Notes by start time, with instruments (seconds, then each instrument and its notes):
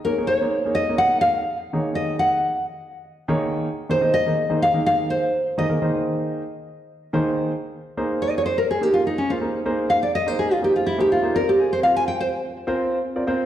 0.05 grand piano A#3 D#4 G#4 C#5, nylon-string guitar A#4
0.18 grand piano A#3 D#4 G#4 C#5
0.27 nylon-string guitar C#5
0.41 grand piano A#3 D#4 G#4 C5
0.65 grand piano A#3 D#4 G#4 C#5
0.75 nylon-string guitar D#5
0.89 grand piano A#3 D#4 G#4 C#5
0.98 nylon-string guitar F#5
1.21 nylon-string guitar F5
1.73 grand piano D#3 A#3 D#4 G#4 C#5
1.95 nylon-string guitar D#5
2.19 nylon-string guitar F#5
3.28 grand piano D#3 A#3 D#4 G#4 C#5
3.89 grand piano D#3 A#3 D#4 G#4 C5, nylon-string guitar C5
4.01 grand piano D#3 A#3 D#4 G#4 D#5
4.14 nylon-string guitar D#5
4.26 grand piano D#3 A#3 D#4 G#4 D#5
4.49 grand piano D#3 A#3 D#4 G#4 C5
4.62 nylon-string guitar F5
4.74 grand piano D#3 A#3 D#4 G#4 A#4
4.86 nylon-string guitar F5
5.10 nylon-string guitar C5
5.58 grand piano D#3 A#3 D#4 G#4 D#5, nylon-string guitar D#5
5.69 grand piano D#3 A#3 D#4 G#4 A#4
5.82 grand piano D#3 A#3 D#4 G#4 C5
7.13 grand piano D#3 A#3 D#4 G#4 C5
7.97 grand piano A#3 D#4 G#4 C5
8.22 nylon-string guitar C#5
8.30 nylon-string guitar D#5
8.38 nylon-string guitar C#5
8.46 nylon-string guitar C5
8.58 nylon-string guitar A#4
8.71 nylon-string guitar G#4
8.81 grand piano A#3 D#4 G#4 A#4, nylon-string guitar G4
8.94 nylon-string guitar F4
9.07 nylon-string guitar D#4
9.18 nylon-string guitar C#4
9.30 grand piano A#3 D#4 G#4 C5, nylon-string guitar F4
9.41 grand piano A#3 D#4 G#4 C5
9.66 grand piano A#3 D#4 G#4 C5
9.90 nylon-string guitar F5
10.03 nylon-string guitar D5
10.15 nylon-string guitar D#5
10.26 grand piano A#3 D#4 G#4 D#5, nylon-string guitar C5
10.39 nylon-string guitar G#4
10.52 nylon-string guitar F4
10.62 grand piano A#3 D#4 G#4 C5, nylon-string guitar G4
10.76 nylon-string guitar F4
10.86 nylon-string guitar E4
10.98 grand piano A#3 D#4 G#4 C5, nylon-string guitar G4
11.12 nylon-string guitar F4
11.22 grand piano A#3 D#4 G#4 C5
11.35 grand piano C4 F4 A#4 D5, nylon-string guitar A#4
11.49 nylon-string guitar G4
11.61 nylon-string guitar G#4
11.73 nylon-string guitar C5
11.83 grand piano C4 F4 A#4 F5, nylon-string guitar F5
11.96 nylon-string guitar G#5
12.08 nylon-string guitar G5
12.21 nylon-string guitar C5
12.67 grand piano C4 F4 A#4 C5
13.16 grand piano C4 F4 A#4 D5
13.27 grand piano C4 F4 A#4 C5